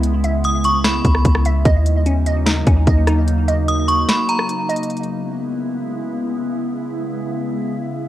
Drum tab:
HH |x-----x-----x-----x-----x-----x-----x-----x-----|x-----x-----x-----x-----x-----x-----x-----x-----|x-----x-----x-----x-----x-----x-----x-----x-x-x-|x-x-x-------------------------------------------|
SD |------------------------o--------r-----r--------|------------------------o-----------------r-----|------------------------o--------r--------------|------------------------------------------------|
BD |------------------------------o-----o-----------|o-----------------------------o-----o-----------|------------------------------------------------|------------------------------------------------|

HH |------------------------------------------------|
SD |------------------------------------------------|
BD |------------------------------------------------|